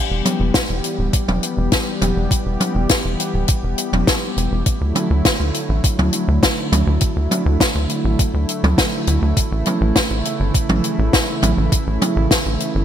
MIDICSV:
0, 0, Header, 1, 4, 480
1, 0, Start_track
1, 0, Tempo, 588235
1, 1885, Time_signature, 4, 2, 24, 8
1, 10484, End_track
2, 0, Start_track
2, 0, Title_t, "Analog synth pad"
2, 0, Program_c, 0, 89
2, 0, Note_on_c, 0, 52, 74
2, 0, Note_on_c, 0, 55, 70
2, 0, Note_on_c, 0, 59, 69
2, 0, Note_on_c, 0, 67, 83
2, 3772, Note_off_c, 0, 55, 0
2, 3772, Note_off_c, 0, 59, 0
2, 3772, Note_off_c, 0, 67, 0
2, 3773, Note_off_c, 0, 52, 0
2, 3805, Note_on_c, 0, 50, 74
2, 3805, Note_on_c, 0, 57, 69
2, 3805, Note_on_c, 0, 64, 88
2, 3806, Note_on_c, 0, 54, 69
2, 7612, Note_off_c, 0, 50, 0
2, 7613, Note_off_c, 0, 54, 0
2, 7645, Note_on_c, 0, 49, 75
2, 7645, Note_on_c, 0, 52, 70
2, 10484, Note_off_c, 0, 49, 0
2, 10484, Note_off_c, 0, 52, 0
2, 10484, Note_off_c, 0, 57, 0
2, 10484, Note_off_c, 0, 64, 0
2, 10484, End_track
3, 0, Start_track
3, 0, Title_t, "Analog synth bass"
3, 0, Program_c, 1, 38
3, 85, Note_on_c, 1, 28, 73
3, 180, Note_off_c, 1, 28, 0
3, 325, Note_on_c, 1, 28, 81
3, 420, Note_off_c, 1, 28, 0
3, 565, Note_on_c, 1, 28, 77
3, 660, Note_off_c, 1, 28, 0
3, 804, Note_on_c, 1, 26, 78
3, 900, Note_off_c, 1, 26, 0
3, 1045, Note_on_c, 1, 28, 77
3, 1140, Note_off_c, 1, 28, 0
3, 1284, Note_on_c, 1, 28, 80
3, 1380, Note_off_c, 1, 28, 0
3, 1645, Note_on_c, 1, 28, 85
3, 1740, Note_off_c, 1, 28, 0
3, 1765, Note_on_c, 1, 28, 74
3, 1860, Note_off_c, 1, 28, 0
3, 2004, Note_on_c, 1, 28, 73
3, 2100, Note_off_c, 1, 28, 0
3, 2245, Note_on_c, 1, 28, 81
3, 2340, Note_off_c, 1, 28, 0
3, 2485, Note_on_c, 1, 28, 80
3, 2580, Note_off_c, 1, 28, 0
3, 2725, Note_on_c, 1, 26, 80
3, 2820, Note_off_c, 1, 26, 0
3, 2965, Note_on_c, 1, 28, 74
3, 3060, Note_off_c, 1, 28, 0
3, 3205, Note_on_c, 1, 28, 82
3, 3300, Note_off_c, 1, 28, 0
3, 3565, Note_on_c, 1, 28, 91
3, 3660, Note_off_c, 1, 28, 0
3, 3685, Note_on_c, 1, 28, 77
3, 3780, Note_off_c, 1, 28, 0
3, 3925, Note_on_c, 1, 38, 76
3, 4020, Note_off_c, 1, 38, 0
3, 4165, Note_on_c, 1, 38, 80
3, 4260, Note_off_c, 1, 38, 0
3, 4405, Note_on_c, 1, 38, 77
3, 4500, Note_off_c, 1, 38, 0
3, 4645, Note_on_c, 1, 33, 79
3, 4740, Note_off_c, 1, 33, 0
3, 4885, Note_on_c, 1, 38, 75
3, 4980, Note_off_c, 1, 38, 0
3, 5125, Note_on_c, 1, 38, 86
3, 5220, Note_off_c, 1, 38, 0
3, 5485, Note_on_c, 1, 38, 88
3, 5580, Note_off_c, 1, 38, 0
3, 5605, Note_on_c, 1, 38, 78
3, 5700, Note_off_c, 1, 38, 0
3, 5845, Note_on_c, 1, 38, 72
3, 5940, Note_off_c, 1, 38, 0
3, 6086, Note_on_c, 1, 38, 83
3, 6180, Note_off_c, 1, 38, 0
3, 6325, Note_on_c, 1, 38, 78
3, 6420, Note_off_c, 1, 38, 0
3, 6565, Note_on_c, 1, 33, 81
3, 6660, Note_off_c, 1, 33, 0
3, 6805, Note_on_c, 1, 38, 75
3, 6900, Note_off_c, 1, 38, 0
3, 7045, Note_on_c, 1, 38, 84
3, 7140, Note_off_c, 1, 38, 0
3, 7405, Note_on_c, 1, 38, 90
3, 7500, Note_off_c, 1, 38, 0
3, 7525, Note_on_c, 1, 38, 73
3, 7620, Note_off_c, 1, 38, 0
3, 7765, Note_on_c, 1, 33, 75
3, 7860, Note_off_c, 1, 33, 0
3, 8005, Note_on_c, 1, 33, 84
3, 8100, Note_off_c, 1, 33, 0
3, 8245, Note_on_c, 1, 33, 78
3, 8340, Note_off_c, 1, 33, 0
3, 8486, Note_on_c, 1, 31, 76
3, 8580, Note_off_c, 1, 31, 0
3, 8726, Note_on_c, 1, 33, 77
3, 8820, Note_off_c, 1, 33, 0
3, 8965, Note_on_c, 1, 33, 82
3, 9060, Note_off_c, 1, 33, 0
3, 9325, Note_on_c, 1, 33, 91
3, 9420, Note_off_c, 1, 33, 0
3, 9446, Note_on_c, 1, 33, 74
3, 9540, Note_off_c, 1, 33, 0
3, 9686, Note_on_c, 1, 33, 73
3, 9780, Note_off_c, 1, 33, 0
3, 9926, Note_on_c, 1, 33, 85
3, 10020, Note_off_c, 1, 33, 0
3, 10165, Note_on_c, 1, 33, 78
3, 10260, Note_off_c, 1, 33, 0
3, 10405, Note_on_c, 1, 31, 76
3, 10484, Note_off_c, 1, 31, 0
3, 10484, End_track
4, 0, Start_track
4, 0, Title_t, "Drums"
4, 207, Note_on_c, 9, 47, 80
4, 208, Note_on_c, 9, 42, 83
4, 289, Note_off_c, 9, 47, 0
4, 290, Note_off_c, 9, 42, 0
4, 443, Note_on_c, 9, 38, 123
4, 445, Note_on_c, 9, 36, 108
4, 447, Note_on_c, 9, 42, 90
4, 524, Note_off_c, 9, 38, 0
4, 526, Note_off_c, 9, 36, 0
4, 529, Note_off_c, 9, 42, 0
4, 684, Note_on_c, 9, 42, 81
4, 766, Note_off_c, 9, 42, 0
4, 924, Note_on_c, 9, 42, 96
4, 925, Note_on_c, 9, 36, 116
4, 1006, Note_off_c, 9, 36, 0
4, 1006, Note_off_c, 9, 42, 0
4, 1048, Note_on_c, 9, 47, 89
4, 1130, Note_off_c, 9, 47, 0
4, 1165, Note_on_c, 9, 42, 78
4, 1247, Note_off_c, 9, 42, 0
4, 1401, Note_on_c, 9, 42, 85
4, 1403, Note_on_c, 9, 38, 112
4, 1405, Note_on_c, 9, 36, 121
4, 1483, Note_off_c, 9, 42, 0
4, 1485, Note_off_c, 9, 38, 0
4, 1486, Note_off_c, 9, 36, 0
4, 1645, Note_on_c, 9, 47, 89
4, 1647, Note_on_c, 9, 42, 78
4, 1727, Note_off_c, 9, 47, 0
4, 1728, Note_off_c, 9, 42, 0
4, 1885, Note_on_c, 9, 36, 118
4, 1889, Note_on_c, 9, 42, 91
4, 1966, Note_off_c, 9, 36, 0
4, 1970, Note_off_c, 9, 42, 0
4, 2125, Note_on_c, 9, 47, 85
4, 2126, Note_on_c, 9, 42, 76
4, 2207, Note_off_c, 9, 47, 0
4, 2208, Note_off_c, 9, 42, 0
4, 2360, Note_on_c, 9, 42, 95
4, 2365, Note_on_c, 9, 36, 114
4, 2365, Note_on_c, 9, 38, 114
4, 2442, Note_off_c, 9, 42, 0
4, 2446, Note_off_c, 9, 36, 0
4, 2446, Note_off_c, 9, 38, 0
4, 2609, Note_on_c, 9, 42, 83
4, 2690, Note_off_c, 9, 42, 0
4, 2838, Note_on_c, 9, 42, 97
4, 2845, Note_on_c, 9, 36, 120
4, 2920, Note_off_c, 9, 42, 0
4, 2926, Note_off_c, 9, 36, 0
4, 3083, Note_on_c, 9, 42, 84
4, 3164, Note_off_c, 9, 42, 0
4, 3209, Note_on_c, 9, 47, 93
4, 3290, Note_off_c, 9, 47, 0
4, 3325, Note_on_c, 9, 36, 127
4, 3325, Note_on_c, 9, 38, 119
4, 3326, Note_on_c, 9, 42, 102
4, 3406, Note_off_c, 9, 36, 0
4, 3406, Note_off_c, 9, 38, 0
4, 3408, Note_off_c, 9, 42, 0
4, 3570, Note_on_c, 9, 42, 77
4, 3652, Note_off_c, 9, 42, 0
4, 3802, Note_on_c, 9, 42, 90
4, 3805, Note_on_c, 9, 36, 122
4, 3883, Note_off_c, 9, 42, 0
4, 3886, Note_off_c, 9, 36, 0
4, 4043, Note_on_c, 9, 42, 74
4, 4043, Note_on_c, 9, 47, 86
4, 4124, Note_off_c, 9, 47, 0
4, 4125, Note_off_c, 9, 42, 0
4, 4283, Note_on_c, 9, 42, 100
4, 4285, Note_on_c, 9, 36, 122
4, 4285, Note_on_c, 9, 38, 127
4, 4364, Note_off_c, 9, 42, 0
4, 4366, Note_off_c, 9, 36, 0
4, 4366, Note_off_c, 9, 38, 0
4, 4524, Note_on_c, 9, 42, 78
4, 4606, Note_off_c, 9, 42, 0
4, 4765, Note_on_c, 9, 36, 123
4, 4766, Note_on_c, 9, 42, 101
4, 4847, Note_off_c, 9, 36, 0
4, 4848, Note_off_c, 9, 42, 0
4, 4887, Note_on_c, 9, 47, 96
4, 4969, Note_off_c, 9, 47, 0
4, 4999, Note_on_c, 9, 42, 85
4, 5081, Note_off_c, 9, 42, 0
4, 5245, Note_on_c, 9, 36, 126
4, 5247, Note_on_c, 9, 38, 125
4, 5247, Note_on_c, 9, 42, 88
4, 5326, Note_off_c, 9, 36, 0
4, 5328, Note_off_c, 9, 42, 0
4, 5329, Note_off_c, 9, 38, 0
4, 5486, Note_on_c, 9, 47, 83
4, 5488, Note_on_c, 9, 42, 77
4, 5568, Note_off_c, 9, 47, 0
4, 5570, Note_off_c, 9, 42, 0
4, 5717, Note_on_c, 9, 42, 89
4, 5725, Note_on_c, 9, 36, 117
4, 5799, Note_off_c, 9, 42, 0
4, 5806, Note_off_c, 9, 36, 0
4, 5967, Note_on_c, 9, 47, 88
4, 5969, Note_on_c, 9, 42, 68
4, 6048, Note_off_c, 9, 47, 0
4, 6051, Note_off_c, 9, 42, 0
4, 6205, Note_on_c, 9, 36, 119
4, 6207, Note_on_c, 9, 38, 123
4, 6208, Note_on_c, 9, 42, 99
4, 6287, Note_off_c, 9, 36, 0
4, 6289, Note_off_c, 9, 38, 0
4, 6290, Note_off_c, 9, 42, 0
4, 6442, Note_on_c, 9, 42, 71
4, 6524, Note_off_c, 9, 42, 0
4, 6684, Note_on_c, 9, 42, 92
4, 6685, Note_on_c, 9, 36, 123
4, 6766, Note_off_c, 9, 36, 0
4, 6766, Note_off_c, 9, 42, 0
4, 6925, Note_on_c, 9, 42, 77
4, 7007, Note_off_c, 9, 42, 0
4, 7050, Note_on_c, 9, 47, 90
4, 7132, Note_off_c, 9, 47, 0
4, 7165, Note_on_c, 9, 36, 117
4, 7165, Note_on_c, 9, 38, 112
4, 7168, Note_on_c, 9, 42, 95
4, 7246, Note_off_c, 9, 36, 0
4, 7247, Note_off_c, 9, 38, 0
4, 7250, Note_off_c, 9, 42, 0
4, 7403, Note_on_c, 9, 42, 79
4, 7485, Note_off_c, 9, 42, 0
4, 7644, Note_on_c, 9, 42, 94
4, 7645, Note_on_c, 9, 36, 116
4, 7726, Note_off_c, 9, 36, 0
4, 7726, Note_off_c, 9, 42, 0
4, 7879, Note_on_c, 9, 42, 71
4, 7889, Note_on_c, 9, 47, 86
4, 7961, Note_off_c, 9, 42, 0
4, 7970, Note_off_c, 9, 47, 0
4, 8124, Note_on_c, 9, 42, 83
4, 8125, Note_on_c, 9, 36, 110
4, 8125, Note_on_c, 9, 38, 118
4, 8205, Note_off_c, 9, 42, 0
4, 8206, Note_off_c, 9, 36, 0
4, 8207, Note_off_c, 9, 38, 0
4, 8366, Note_on_c, 9, 42, 81
4, 8448, Note_off_c, 9, 42, 0
4, 8605, Note_on_c, 9, 36, 121
4, 8606, Note_on_c, 9, 42, 98
4, 8686, Note_off_c, 9, 36, 0
4, 8688, Note_off_c, 9, 42, 0
4, 8726, Note_on_c, 9, 47, 104
4, 8808, Note_off_c, 9, 47, 0
4, 8844, Note_on_c, 9, 42, 72
4, 8925, Note_off_c, 9, 42, 0
4, 9085, Note_on_c, 9, 36, 120
4, 9085, Note_on_c, 9, 38, 114
4, 9089, Note_on_c, 9, 42, 95
4, 9166, Note_off_c, 9, 36, 0
4, 9166, Note_off_c, 9, 38, 0
4, 9170, Note_off_c, 9, 42, 0
4, 9323, Note_on_c, 9, 47, 90
4, 9329, Note_on_c, 9, 42, 73
4, 9404, Note_off_c, 9, 47, 0
4, 9411, Note_off_c, 9, 42, 0
4, 9565, Note_on_c, 9, 36, 112
4, 9565, Note_on_c, 9, 42, 82
4, 9646, Note_off_c, 9, 36, 0
4, 9647, Note_off_c, 9, 42, 0
4, 9806, Note_on_c, 9, 42, 77
4, 9806, Note_on_c, 9, 47, 98
4, 9887, Note_off_c, 9, 47, 0
4, 9888, Note_off_c, 9, 42, 0
4, 10044, Note_on_c, 9, 38, 119
4, 10045, Note_on_c, 9, 36, 107
4, 10048, Note_on_c, 9, 42, 99
4, 10125, Note_off_c, 9, 38, 0
4, 10126, Note_off_c, 9, 36, 0
4, 10130, Note_off_c, 9, 42, 0
4, 10284, Note_on_c, 9, 42, 74
4, 10365, Note_off_c, 9, 42, 0
4, 10484, End_track
0, 0, End_of_file